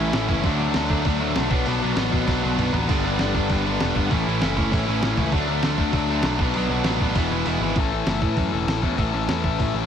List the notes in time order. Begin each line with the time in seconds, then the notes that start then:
Already playing: A2 E3 A3
0.00 A1 A2 E3 A3 C#4 E4
0.13 A1 A2 E3 A3 C#4 E4, snare, open hi-hat
0.28 F#1 A2 E3 A3 C#4 E4, kick
0.44 D2 D3 F#3 A3 D4, kick, open hi-hat
0.59 D3 F#3 A3 D4
0.74 D2 D3 F#3 A3 D4, snare, open hi-hat
0.90 D2 D3 F#3 A3 D4, kick
1.05 D2 D3 F#3 A3 D4, kick, open hi-hat
1.20 D3 F#3 A3 D4
1.36 B1 D3 F#3 A3 D4, snare, open hi-hat
1.50 B1 B2 F#3 B3 D4, kick
1.66 B1 B2 F#3 B3 D4, open hi-hat
1.82 B1 B2 F#3 B3 D4
1.96 A1 B2 F#3 B3 D4, snare, open hi-hat
2.11 B2 F#3 B3 D4, kick
2.26 B1 B2 F#3 B3 D4, kick, snare, open hi-hat
2.43 B1 B2 F#3 B3 D4, high tom
2.57 B1 B2 F#3 B3 D4, mid tom, open hi-hat
2.73 A1 B2 F#3 B3 D4, floor tom
2.87 G1 G2 D3 G3 B3 D4, kick, crash
2.93 G3
3.04 G2 D3 G3 B3 D4
3.18 G1 G2 D3 G3 B3 D4, snare, open hi-hat
3.34 G1 G2 D3 G3 B3 D4, kick
3.50 G1 G2 D3 G3 B3 D4, kick, open hi-hat
3.66 G2 D3 G3 B3 D4
3.80 E1 G2 D3 G3 B3 D4, snare, open hi-hat
3.95 G1 G2 D3 G3 B3 D4, kick
4.11 A1 A2 E3 A3 C#4 E4, kick, open hi-hat
4.27 A1 A2 E3 A3 C#4 E4
4.42 F#1 A2 E3 A3 C#4 E4, snare, open hi-hat
4.57 A2 E3 A3 C#4 E4, kick
4.72 A1 A2 E3 A3 C#4 E4, kick, open hi-hat
4.86 A1 A2 E3 A3 C#4 E4
5.01 A1 A2 E3 A3 C#4 E4, snare, open hi-hat
5.17 C#2 A2 E3 A3 C#4 E4, kick
5.32 D2 D3 F#3 A3 D4, kick, open hi-hat
5.48 D3 F#3 A3 D4
5.63 D2 D3 F#3 A3 D4, snare, open hi-hat
5.78 D2 D3 F#3 A3 D4, kick
5.93 D2 D3 F#3 A3 D4, kick, open hi-hat
6.10 D3 F#3 A3 D4
6.23 B1 D3 F#3 A3 D4, snare, open hi-hat
6.39 B1 B2 F#3 B3 D4, kick
6.54 B1 F#3 B3 D4, open hi-hat
6.58 B2
6.69 B1 B2 F#3 B3 D4
6.84 A1 B2 F#3 B3 D4, snare, open hi-hat
7.00 B2 F#3 B3 D4, kick
7.15 E1 E2 B2 E3 G#3 B3 E4, kick, open hi-hat
7.19 E3
7.31 E1 E3 G#3 B3 E4
7.46 E1 E3 G#3 B3 E4, open hi-hat
7.60 G#1 B3 E4
7.64 E3 G#3
7.76 A1 A2 E3 A3 C#4, kick, open hi-hat
7.80 E4 A4
7.92 A2 E3 A3 C#4 E4 A4
8.06 F#1 A2 E3 A3 C#4 E4 A4, snare, open hi-hat
8.22 A2 E3 A3 C#4 E4 A4, kick
8.35 F#2 A2 E3 A3 C#4 E4 A4, kick, open hi-hat
8.52 E1 A2 E3 A3 C#4 E4 A4
8.67 A1 A2 E3 A3 C#4 E4 A4, snare, open hi-hat
8.82 E2 A2 E3 A3 C#4 E4 A4, kick
8.96 A1 A2 E3 A3 C#4 E4 A4, kick, open hi-hat
9.01 A3
9.12 A1 A2 E3 A3 C#4 E4 A4
9.28 E2 A2 E3 A3 C#4 E4 A4, snare, open hi-hat
9.44 A1 A2 E3 A3 C#4 E4 A4, kick
9.59 A1 A2 E3 A3 C#4 E4 A4, kick, open hi-hat
9.74 A1 A2 E3 A3 C#4 E4 A4